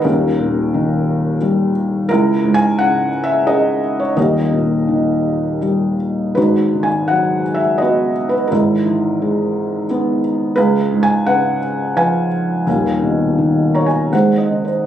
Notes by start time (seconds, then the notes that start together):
0.02 D#1 D#2 C#4 G4 A#4
0.39 A#2
0.74 D#3
1.42 G3
2.09 C#2 E4 A#4
2.44 G#2
2.54 G#5
2.78 C#3 F#5
3.24 E5
3.47 C#4 G#4 A#4 D#5
4.00 C#5
4.16 D#1 D#2 G4 A#4 D#5
4.52 A#2
4.88 D#3
5.61 G3
6.35 G#1 G#2 D#4 F#4 B4
6.74 D#3
6.83 G#5
7.08 F#3 F#5
7.54 E5
7.78 B3 F#4 B4 D#5
8.29 B4
8.47 G#1 A#4
8.51 G#2 D#4 E4
8.86 E3
9.22 G#3
9.90 B3
10.56 C#2 G#4 B4 F5
10.92 G#2
11.03 G#5
11.25 C#3 B4 F#5
11.96 F3 B4 F5 G#5
12.67 D#1 D#2
13.02 B2
13.38 D#3
13.75 A#4 C#5 A#5
13.86 G#5
14.12 G#1 G#2 G#4 C5 F#5
14.38 D#5
14.51 D#3
14.65 C5